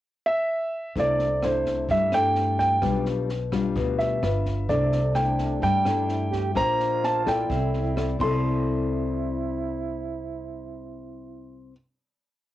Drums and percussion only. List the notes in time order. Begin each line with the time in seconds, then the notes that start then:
0.95 kick, snare
1.19 snare
1.43 cross-stick, snare
1.66 kick, snare
1.89 kick, snare
2.12 cross-stick, snare
2.35 snare
2.59 kick, snare
2.82 kick, cross-stick, snare
3.06 snare
3.29 snare
3.52 kick, cross-stick, snare
3.76 kick, snare
4.00 snare
4.23 cross-stick, snare
4.46 kick, snare
4.69 kick, snare
4.92 snare
5.15 cross-stick, snare
5.38 kick, snare
5.62 kick, snare
5.85 cross-stick, snare
6.09 snare
6.32 kick, snare
6.56 kick, cross-stick, snare
6.80 snare
7.04 snare
7.26 kick, cross-stick, snare
7.50 kick, snare
7.74 snare
7.97 cross-stick, snare
8.20 kick, crash